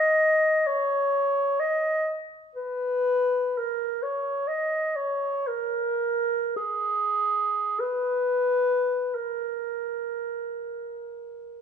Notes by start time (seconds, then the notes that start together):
Already playing: D#5
0.67 C#5
1.60 D#5
2.55 B4
3.58 A#4
4.03 C#5
4.48 D#5
4.96 C#5
5.47 A#4
6.56 G#4
7.80 B4
9.15 A#4